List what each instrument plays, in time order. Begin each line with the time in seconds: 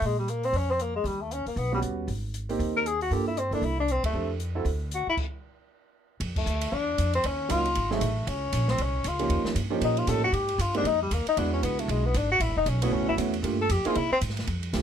0.01 upright bass A#2, open hi-hat
0.06 tenor saxophone G#3
0.19 tenor saxophone G3
0.28 tenor saxophone A#3, closed hi-hat
0.43 tenor saxophone C4, open hi-hat
0.53 upright bass F2, open hi-hat
0.57 tenor saxophone C#4
0.71 tenor saxophone C4
0.79 tenor saxophone A#3, closed hi-hat
0.96 tenor saxophone G#3
1.04 upright bass D#2, tenor saxophone G3, open hi-hat
1.21 tenor saxophone A3
1.31 tenor saxophone C#4, closed hi-hat
1.46 tenor saxophone A#3, muted upright bass stroke, open hi-hat
1.56 upright bass B1, tenor saxophone B3, open hi-hat
1.72 grand piano G3 B3 C#4 F#4, tenor saxophone G3
1.82 upright bass D#2, closed hi-hat
2.08 upright bass G#1, open hi-hat
2.34 closed hi-hat
2.49 grand piano A#3 C4 D#4 G4, open hi-hat
2.59 upright bass D#2, open hi-hat
2.76 tenor saxophone A#4
2.86 tenor saxophone G#4, closed hi-hat
3.01 tenor saxophone F#4, open hi-hat
3.11 upright bass G2, grand piano A#3 D4 F4 A4, tenor saxophone G4, open hi-hat
3.27 tenor saxophone E4
3.37 tenor saxophone C4, closed hi-hat
3.51 upright bass C#2, grand piano A#3 D4 E4 A4, tenor saxophone D4, open hi-hat
3.62 upright bass C2, tenor saxophone E4, open hi-hat
3.80 tenor saxophone D4
3.88 tenor saxophone C4, closed hi-hat
4.04 tenor saxophone A3, muted upright bass stroke, kick, ride
4.13 upright bass F2, grand piano C4 D4 G4 A4
4.40 closed hi-hat
4.55 grand piano C4 E4 F#4 A4
4.65 upright bass D2, open hi-hat
4.91 tenor saxophone F#4, closed hi-hat
5.07 tenor saxophone E4, muted upright bass stroke
5.17 kick, crash
6.20 upright bass F2, ride
6.36 tenor saxophone A3, kick, crash
6.46 upright bass D2, hi-hat pedal
6.61 ride
6.72 upright bass E2, tenor saxophone D4
6.98 upright bass F2, hi-hat pedal, ride
7.13 tenor saxophone C4, ride
7.24 upright bass D#2, tenor saxophone C#4, ride
7.49 upright bass C#2, grand piano F#3 A#3 C#4 D#4 F4, tenor saxophone F4, hi-hat pedal, ride
7.65 ride
7.75 upright bass G#1, ride
7.90 grand piano F#3 A3 C4 D#4 G#4, tenor saxophone A3, snare
8.01 upright bass A1, hi-hat pedal, ride
8.27 upright bass C#2, tenor saxophone C#4, ride
8.53 upright bass A#1, hi-hat pedal, ride
8.68 tenor saxophone C4, snare
8.78 upright bass C2, tenor saxophone C#4, ride
9.04 upright bass C#2, tenor saxophone F4, hi-hat pedal, ride
9.19 grand piano F3 A#3 C#4 D#4 G4, ride
9.29 upright bass D#2, ride
9.44 muted upright bass stroke, snare
9.55 upright bass G2, hi-hat pedal, ride
9.70 grand piano F3 A#3 C#4 D#4 G4
9.81 upright bass A#2, tenor saxophone D#4, ride
9.97 tenor saxophone F4, ride
10.07 upright bass A2, grand piano F3 A#3 C#4 D#4 G4, tenor saxophone A4, hi-hat pedal, ride
10.24 tenor saxophone F#4
10.32 upright bass G#2, tenor saxophone G4, ride
10.48 ride
10.58 upright bass G2, tenor saxophone F4, hi-hat pedal, ride
10.74 grand piano G#3 A#3 C4 D#4 G4, tenor saxophone D4, ride
10.84 upright bass F2, tenor saxophone D#4, ride
11.02 tenor saxophone G3
11.11 upright bass D#2, tenor saxophone A#3, hi-hat pedal, ride
11.26 tenor saxophone D#4, muted upright bass stroke, ride
11.37 upright bass E2, grand piano G#3 B3 D4 E4 F#4, tenor saxophone D4, ride
11.53 tenor saxophone C#4
11.63 upright bass C#2, tenor saxophone B3, hi-hat pedal, ride
11.79 tenor saxophone A3, ride
11.88 upright bass B1, tenor saxophone G#3, ride
12.06 tenor saxophone B3
12.14 upright bass G#1, tenor saxophone D4, hi-hat pedal, ride
12.31 tenor saxophone F#4
12.40 upright bass A1, tenor saxophone E4, ride
12.49 upright bass F#1
12.56 upright bass E1, tenor saxophone D#4
12.66 upright bass B1, tenor saxophone C#4, hi-hat pedal, ride
12.82 grand piano A3 B3 C#4 E4 F#4, tenor saxophone B3, ride
12.91 upright bass C#2, tenor saxophone C#4
13.00 upright bass A1
13.09 upright bass F#1, tenor saxophone E4
13.17 upright bass E2, grand piano A3 B3 C#4 E4 F#4, hi-hat pedal, ride
13.34 ride
13.42 upright bass G2, grand piano A3 A#3 D4 F4 G4, ride
13.61 tenor saxophone A4
13.69 upright bass F2, tenor saxophone G4, hi-hat pedal, ride
13.85 grand piano A#3 C4 D#4 E4 G#4, tenor saxophone F4, muted upright bass stroke, ride
13.95 upright bass C3, tenor saxophone E4, ride
14.11 tenor saxophone C4, muted upright bass stroke
14.21 upright bass G#2, hi-hat pedal, ride
14.30 snare
14.37 snare, ride
14.47 upright bass F2, ride
14.63 ride
14.73 upright bass C2, grand piano A3 C4 D4 F4 G4, snare, hi-hat pedal, ride